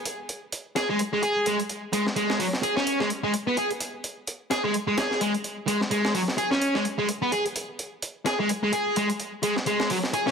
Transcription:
0.05 closed hi-hat medium
0.29 closed hi-hat medium
0.52 closed hi-hat medium
0.76 0.87 G#4 loud
0.76 snare soft
0.76 closed hi-hat medium
0.89 0.99 G#3 loud
0.99 closed hi-hat medium
1.13 1.21 G#3 medium
1.23 1.45 G#4 loud
1.23 closed hi-hat medium
1.46 1.57 G#3 medium
1.46 closed hi-hat medium
1.60 closed hi-hat soft
1.69 closed hi-hat medium
1.93 2.04 G#3 loud
1.93 closed hi-hat medium
2.06 snare soft
2.16 2.39 G#3 loud
2.16 closed hi-hat medium
2.30 snare medium
2.40 2.47 F#3 medium
2.40 open hi-hat medium
2.53 snare soft
2.63 2.75 G#4 loud
2.63 closed hi-hat medium
2.77 2.99 C#4 medium
2.77 snare soft
2.87 closed hi-hat medium
3.00 3.09 G#3 medium
3.00 snare soft
3.10 closed hi-hat medium
3.23 3.32 G#3 medium
3.34 closed hi-hat medium
3.47 3.56 B3 medium
3.57 3.68 G#4 medium
3.57 closed hi-hat medium
3.71 closed hi-hat soft
3.80 closed hi-hat medium
4.04 closed hi-hat medium
4.27 closed hi-hat medium
4.51 4.62 G#4 medium
4.51 snare soft
4.51 closed hi-hat medium
4.64 4.74 G#3 loud
4.74 closed hi-hat medium
4.87 4.96 G#3 medium
4.97 5.20 G#4 loud
4.97 snare loud
4.97 closed hi-hat medium
5.11 snare soft
5.21 5.32 G#3 medium
5.21 closed hi-hat medium
5.34 closed hi-hat soft
5.44 closed hi-hat medium
5.68 5.79 G#3 loud
5.68 closed hi-hat medium
5.81 snare soft
5.91 6.14 G#3 medium
5.91 closed hi-hat medium
6.05 snare medium
6.15 6.22 F#3 medium
6.15 open hi-hat medium
6.28 snare soft
6.38 6.50 G#4 medium
6.38 closed hi-hat medium
6.51 6.74 C#4 medium
6.51 snare soft
6.62 closed hi-hat medium
6.75 6.84 G#3 medium
6.75 snare soft
6.85 closed hi-hat medium
6.99 7.07 G#3 medium
7.09 closed hi-hat medium
7.22 7.31 B3 medium
7.32 7.43 G#4 medium
7.32 closed hi-hat medium
7.46 closed hi-hat soft
7.56 closed hi-hat medium
7.79 closed hi-hat medium
8.02 closed hi-hat medium
8.26 8.37 G#4 loud
8.26 snare soft
8.26 closed hi-hat medium
8.39 8.49 G#3 loud
8.49 closed hi-hat medium
8.63 8.71 G#3 medium
8.73 8.95 G#4 loud
8.73 closed hi-hat medium
8.96 9.08 G#3 medium
8.96 closed hi-hat medium
9.10 closed hi-hat soft
9.20 closed hi-hat medium
9.43 9.54 G#3 loud
9.43 closed hi-hat medium
9.56 snare soft
9.66 9.89 G#3 loud
9.66 closed hi-hat medium
9.80 snare medium
9.90 9.97 F#3 medium
9.90 open hi-hat medium
10.03 snare soft
10.14 10.25 G#4 loud
10.14 closed hi-hat medium
10.27 10.31 C#4 loud
10.27 snare soft

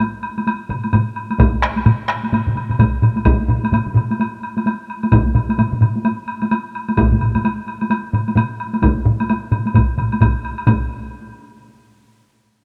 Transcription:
0.00 taiko high medium
0.00 high woodblock medium
0.23 high woodblock soft
0.38 taiko high soft
0.38 high woodblock soft
0.47 taiko high medium
0.47 high woodblock medium
0.69 taiko low-mid medium
0.69 taiko mid medium
0.69 high woodblock soft
0.84 taiko high soft
0.84 high woodblock soft
0.93 taiko low-mid loud
0.93 taiko mid medium
0.93 taiko high medium
0.93 high woodblock medium
1.16 high woodblock soft
1.30 taiko high soft
1.30 high woodblock soft
1.38 taiko loud
1.38 taiko low-mid loud
1.38 taiko mid medium
1.38 taiko high medium
1.38 high woodblock medium
1.53 taiko high soft
1.62 taiko rim medium
1.62 high woodblock soft
1.76 taiko high soft
1.76 high woodblock soft
1.86 taiko low-mid loud
1.86 taiko mid loud
1.86 taiko high medium
1.86 high woodblock medium
2.09 taiko rim medium
2.09 high woodblock soft
2.23 taiko high soft
2.23 high woodblock soft
2.32 taiko low-mid medium
2.32 taiko mid medium
2.32 taiko high medium
2.32 high woodblock soft
2.47 taiko low-mid medium
2.47 taiko mid medium
2.56 taiko low-mid medium
2.56 taiko mid medium
2.56 high woodblock soft
2.69 taiko low-mid medium
2.69 taiko mid medium
2.69 high woodblock soft
2.79 taiko medium
2.79 taiko low-mid medium
2.79 taiko mid loud
2.79 taiko high medium
2.79 high woodblock medium
3.02 taiko low-mid medium
3.02 taiko mid medium
3.02 high woodblock soft
3.16 taiko high medium
3.16 high woodblock soft
3.25 taiko loud
3.25 taiko low-mid loud
3.25 taiko mid loud
3.25 taiko high medium
3.25 high woodblock medium
3.40 taiko high medium
3.48 taiko low-mid medium
3.48 taiko mid loud
3.48 high woodblock soft
3.64 taiko high medium
3.64 high woodblock medium
3.72 taiko low-mid medium
3.72 taiko mid medium
3.72 taiko high medium
3.72 high woodblock medium
3.86 taiko low-mid medium
3.86 taiko mid medium
3.95 taiko low-mid medium
3.95 taiko mid medium
3.95 high woodblock soft
4.11 taiko high medium
4.11 high woodblock soft
4.20 taiko high medium
4.20 high woodblock soft
4.43 high woodblock soft
4.57 taiko high medium
4.57 high woodblock soft
4.66 taiko high medium
4.66 high woodblock medium
4.90 high woodblock soft
5.03 taiko high medium
5.03 high woodblock soft
5.12 taiko medium
5.12 taiko low-mid loud
5.12 taiko mid medium
5.12 taiko high medium
5.12 high woodblock medium
5.26 taiko high medium
5.35 taiko low-mid loud
5.35 taiko mid loud
5.35 high woodblock soft
5.49 taiko high medium
5.49 high woodblock soft
5.58 taiko low-mid medium
5.58 taiko mid medium
5.58 taiko high medium
5.58 high woodblock soft
5.72 taiko low-mid medium
5.72 taiko mid medium
5.81 taiko low-mid medium
5.81 taiko mid medium
5.81 high woodblock soft
5.96 taiko high medium
6.05 taiko high medium
6.05 high woodblock soft
6.28 high woodblock soft
6.42 taiko high medium
6.42 high woodblock soft
6.51 taiko high medium
6.51 high woodblock medium
6.75 high woodblock soft
6.89 taiko high medium
6.89 high woodblock soft
6.97 taiko medium
6.97 taiko low-mid medium
6.97 taiko mid medium
6.97 taiko high medium
6.97 high woodblock medium
7.11 taiko low-mid medium
7.11 taiko mid medium
7.11 taiko high medium
7.20 taiko low-mid medium
7.20 taiko mid medium
7.20 high woodblock soft
7.35 taiko low-mid medium
7.35 taiko mid medium
7.35 taiko high medium
7.35 high woodblock medium
7.45 taiko high medium
7.45 high woodblock medium
7.68 high woodblock soft
7.81 taiko high medium
7.81 high woodblock soft
7.90 taiko high medium
7.90 high woodblock medium
8.13 taiko low-mid medium
8.13 taiko mid medium
8.13 high woodblock soft
8.28 taiko high medium
8.28 high woodblock soft
8.36 taiko low-mid medium
8.36 taiko mid loud
8.36 taiko high medium
8.36 high woodblock medium
8.60 high woodblock soft
8.73 taiko high medium
8.73 high woodblock soft
8.82 taiko medium
8.82 taiko low-mid loud
8.82 taiko mid medium
8.82 taiko high medium
8.82 high woodblock medium
8.97 taiko high soft
9.05 taiko low-mid medium
9.05 taiko mid loud
9.20 taiko high medium
9.20 high woodblock medium
9.30 taiko high medium
9.30 high woodblock medium
9.51 taiko low-mid medium
9.51 taiko mid medium
9.51 high woodblock soft
9.66 taiko high medium
9.66 high woodblock soft
9.74 taiko medium
9.74 taiko low-mid medium
9.74 taiko mid medium
9.74 taiko high medium
9.74 high woodblock medium
9.98 taiko low-mid medium
9.98 taiko mid medium
9.98 high woodblock soft
10.12 taiko high medium
10.12 high woodblock soft
10.21 taiko medium
10.21 taiko low-mid medium
10.21 taiko mid medium
10.21 taiko high medium
10.21 high woodblock medium
10.45 high woodblock soft
10.58 high woodblock soft
10.67 taiko medium
10.67 taiko low-mid loud
10.67 taiko mid loud
10.67 taiko high medium
10.67 high woodblock medium

